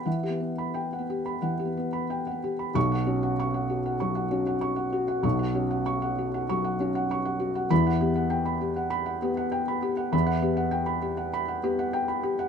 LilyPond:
<<
  \new Staff \with { instrumentName = "Felt piano" } { \time 4/4 \key e \dorian \tempo 4 = 98 <fis'' b''>16 g'16 b16 b''16 g''16 fis''16 g'16 b''16 fis''16 g'16 b16 b''16 g''16 fis''16 g'16 b''16 | r16 fis''16 fis'16 fis''16 cis'''16 fis''16 fis'16 fis''16 cis'''16 fis''16 fis'16 fis''16 cis'''16 fis''16 fis'16 fis''16 | cis'''16 fis''16 fis'16 fis''16 cis'''16 fis''16 fis'16 fis''16 cis'''16 fis''16 fis'16 fis''16 cis'''16 fis''16 fis'16 fis''16 | r16 fis''16 g'16 fis''16 g''16 b''16 g'16 fis''16 b''16 fis''16 g'16 fis''16 g''16 b''16 g'16 fis''16 |
b''16 fis''16 g'16 fis''16 g''16 b''16 g'16 fis''16 b''16 fis''16 g'16 fis''16 g''16 b''16 g'16 fis''16 | }
  \new Staff \with { instrumentName = "Felt piano" } { \time 4/4 \key e \dorian \tuplet 3/2 { e8 b4 r8 b4 e8 b4 r8 b4 } | <b,, b, cis'''>8 cis'8 r4 fis8 cis'8 r4 | <b,, b,>8 cis'8 r4 fis8 cis'8 r4 | <e, e b''>8 b8 r4. b8 r4 |
<e, e>8 b8 r4. b8 r4 | }
>>